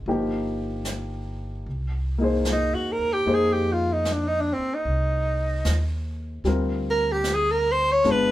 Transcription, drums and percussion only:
0.05 brush sweep
0.85 snare, hi-hat pedal
1.65 brush sweep
2.45 snare, hi-hat pedal
3.25 brush sweep
4.05 snare, hi-hat pedal
4.85 brush sweep
5.65 snare, hi-hat pedal
6.45 brush sweep, snare
7.24 snare, hi-hat pedal
8.04 brush sweep, snare

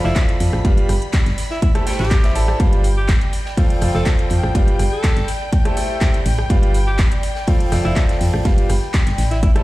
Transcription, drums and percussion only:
0.04 snare
0.16 kick, snare, clap, closed hi-hat, ride
0.29 closed hi-hat
0.40 open hi-hat, ride
0.53 cross-stick, ride
0.65 kick, closed hi-hat, ride
0.77 closed hi-hat, ride
0.89 cross-stick, open hi-hat, ride
1.02 closed hi-hat
1.13 kick, snare, clap, closed hi-hat, ride
1.26 snare, closed hi-hat
1.38 snare, open hi-hat, ride
1.50 snare
1.62 kick, closed hi-hat, ride
1.75 cross-stick, closed hi-hat
1.86 snare, open hi-hat, ride
1.93 snare, ride
1.99 snare, ride
2.05 snare, ride
2.11 kick, snare, clap, closed hi-hat, ride
2.24 snare, closed hi-hat, ride
2.35 open hi-hat, ride
2.48 cross-stick, ride
2.60 kick, closed hi-hat, ride
2.73 closed hi-hat, ride
2.84 open hi-hat, ride
3.08 kick, snare, clap, closed hi-hat, ride
3.21 closed hi-hat, ride
3.33 open hi-hat, ride
3.45 snare
3.57 kick, closed hi-hat, open hi-hat
3.70 closed hi-hat
3.81 cross-stick, open hi-hat, ride
3.94 snare
4.05 kick, snare, clap, closed hi-hat, ride
4.19 closed hi-hat
4.30 open hi-hat, ride
4.43 cross-stick, ride
4.55 kick, closed hi-hat, ride
4.67 closed hi-hat, ride
4.79 cross-stick, open hi-hat, ride
5.03 kick, snare, clap, closed hi-hat, ride
5.17 snare, closed hi-hat
5.28 snare, open hi-hat, ride
5.53 kick, closed hi-hat, ride
5.65 cross-stick, closed hi-hat
5.77 open hi-hat, ride
6.01 kick, snare, clap, closed hi-hat, ride
6.14 closed hi-hat
6.26 open hi-hat, ride
6.38 cross-stick, ride
6.50 kick, closed hi-hat, ride
6.63 closed hi-hat, ride
6.74 open hi-hat, ride
6.98 kick, snare, clap, closed hi-hat, ride
7.12 closed hi-hat, ride
7.23 open hi-hat, ride
7.35 snare
7.47 kick, closed hi-hat, open hi-hat
7.60 closed hi-hat
7.72 cross-stick, snare, open hi-hat, ride
7.85 ride
7.96 kick, clap, closed hi-hat, ride
8.09 snare, closed hi-hat
8.20 open hi-hat
8.34 cross-stick
8.45 kick, snare, closed hi-hat, ride
8.58 closed hi-hat, ride
8.70 cross-stick, open hi-hat, ride
8.94 kick, snare, clap, closed hi-hat, ride
9.07 snare, closed hi-hat
9.18 snare, open hi-hat, ride
9.31 snare, closed hi-hat
9.43 kick, closed hi-hat, ride
9.56 cross-stick, closed hi-hat

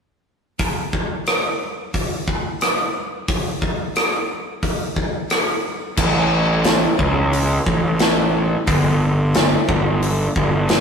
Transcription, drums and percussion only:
0.59 kick, open hi-hat
0.93 kick
1.27 cross-stick, open hi-hat
1.94 kick, open hi-hat
2.28 kick
2.61 cross-stick, open hi-hat
3.28 kick, open hi-hat
3.62 kick
3.96 cross-stick, open hi-hat
4.63 kick, open hi-hat
4.96 kick
5.30 cross-stick, open hi-hat
5.97 kick, crash
6.64 snare, open hi-hat
6.99 kick
7.33 open hi-hat
7.66 kick
7.99 snare, open hi-hat
8.67 kick, open hi-hat
9.35 snare, open hi-hat
9.69 kick
10.03 open hi-hat
10.36 kick
10.69 snare, open hi-hat

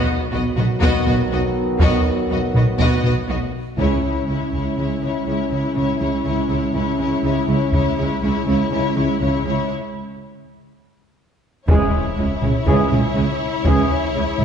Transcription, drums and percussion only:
0.58 taiko low-mid
0.82 taiko
1.06 taiko low-mid
1.80 taiko
2.54 taiko low-mid
2.79 taiko
3.03 taiko low-mid
3.77 taiko
4.51 taiko
7.72 taiko
8.46 taiko
11.68 taiko
12.42 taiko low-mid
12.67 taiko
12.91 taiko low-mid
13.65 taiko
14.38 taiko low-mid

